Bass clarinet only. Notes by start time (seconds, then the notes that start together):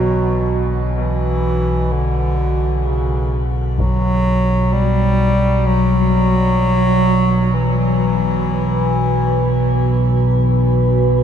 Already playing: F#3
0.97 E3
1.92 D3
2.86 C#3
3.79 F#3
4.72 G3
5.66 F#3
7.54 E3